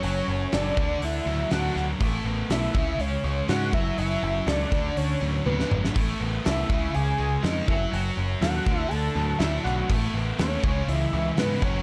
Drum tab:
HH |o---o---o---o---|o---o---o---o---|o---o---o-------|o---o---o---o---|
SD |----o-------o-o-|----o-------o---|----o-o------o-o|----o-------o---|
T1 |----------------|----------------|------------o---|----------------|
T2 |----------------|----------------|--------------o-|----------------|
BD |------o---------|o-----o-------o-|------o---------|o-----o-------o-|

HH |o---o---o---o---|o---o---o---o---|
SD |----o-------o-o-|----o-------o-o-|
T1 |----------------|----------------|
T2 |----------------|----------------|
BD |------o---------|o-----o-------o-|